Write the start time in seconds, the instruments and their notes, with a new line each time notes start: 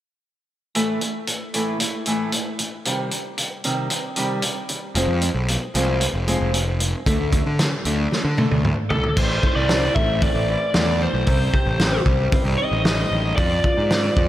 0.75 steel-string acoustic guitar A2 E3 A3, closed hi-hat
1.01 steel-string acoustic guitar A2 E3, closed hi-hat
1.27 steel-string acoustic guitar A2 E3, closed hi-hat
1.54 steel-string acoustic guitar A2 E3 A3, closed hi-hat
1.80 steel-string acoustic guitar A2 E3, closed hi-hat
2.06 steel-string acoustic guitar A2 E3 A3, closed hi-hat
2.32 steel-string acoustic guitar A2 E3, closed hi-hat
2.59 steel-string acoustic guitar A2 E3, closed hi-hat
2.85 steel-string acoustic guitar C3 D#3 G3, closed hi-hat
3.11 steel-string acoustic guitar C3 D#3, closed hi-hat
3.38 steel-string acoustic guitar C3 D#3, closed hi-hat
3.64 steel-string acoustic guitar C3 D#3 G3, closed hi-hat
3.90 steel-string acoustic guitar C3 D#3, closed hi-hat
4.16 steel-string acoustic guitar C3 D#3 G3, closed hi-hat
4.42 steel-string acoustic guitar C3 D#3, closed hi-hat
4.69 steel-string acoustic guitar C3 D#3, closed hi-hat
4.95 picked electric bass F1, steel-string acoustic guitar F3 G#3 C4, closed hi-hat
5.08 picked electric bass F2
5.21 steel-string acoustic guitar F3 G#3, closed hi-hat
5.35 picked electric bass B1
5.48 steel-string acoustic guitar F3 G#3, closed hi-hat
5.74 picked electric bass C2, steel-string acoustic guitar F3 G#3 C4, closed hi-hat
6.01 steel-string acoustic guitar F3 G#3, closed hi-hat
6.14 picked electric bass F1
6.27 steel-string acoustic guitar F3 G#3 C4, closed hi-hat
6.41 picked electric bass F1
6.53 steel-string acoustic guitar F3 G#3, closed hi-hat
6.80 steel-string acoustic guitar F3 G#3, closed hi-hat
7.06 picked electric bass D2, steel-string acoustic guitar D3 A3 D4, kick, closed hi-hat
7.20 picked electric bass D2
7.32 steel-string acoustic guitar D3 A3, kick, closed hi-hat
7.46 picked electric bass D3
7.59 steel-string acoustic guitar D3 A3, snare, closed hi-hat
7.85 picked electric bass D2, steel-string acoustic guitar D3 A3 D4, closed hi-hat
8.11 steel-string acoustic guitar D3 A3, snare
8.25 picked electric bass D3
8.37 steel-string acoustic guitar D3 A3 D4, high tom
8.51 picked electric bass D2, high tom
8.64 steel-string acoustic guitar D3 A3, mid tom
8.90 picked electric bass C2, steel-string acoustic guitar D3 A3, lead electric guitar A4, floor tom
9.04 floor tom
9.17 picked electric bass A1, steel-string acoustic guitar A2, lead electric guitar C5, kick, crash
9.43 steel-string acoustic guitar E4, kick
9.48 lead electric guitar C5
9.56 picked electric bass C2, lead electric guitar D5
9.69 steel-string acoustic guitar C4, snare, open hi-hat
9.95 picked electric bass A1, steel-string acoustic guitar A3, lead electric guitar E5, kick
10.22 steel-string acoustic guitar C4, lead electric guitar D5, kick, open hi-hat
10.34 picked electric bass A1
10.48 steel-string acoustic guitar E3
10.74 picked electric bass E2, steel-string acoustic guitar A3, snare, open hi-hat
11.01 steel-string acoustic guitar E3, lead electric guitar C5
11.14 picked electric bass B1
11.27 picked electric bass C2, steel-string acoustic guitar C3, kick, open hi-hat
11.54 steel-string acoustic guitar G4, kick
11.66 picked electric bass A1
11.79 steel-string acoustic guitar C4, snare, open hi-hat
12.06 picked electric bass C2, steel-string acoustic guitar G3, kick
12.32 steel-string acoustic guitar C4, kick, open hi-hat
12.44 picked electric bass C2
12.58 steel-string acoustic guitar D#3, lead electric guitar D#5
12.72 picked electric bass A1
12.85 steel-string acoustic guitar G3, snare, open hi-hat
13.12 picked electric bass A1, steel-string acoustic guitar D#3
13.36 picked electric bass F2, steel-string acoustic guitar F3, lead electric guitar D5, kick, open hi-hat
13.64 steel-string acoustic guitar F4, kick
13.78 picked electric bass G#2
13.90 steel-string acoustic guitar C4, snare, open hi-hat
14.17 picked electric bass F2, steel-string acoustic guitar G#3, kick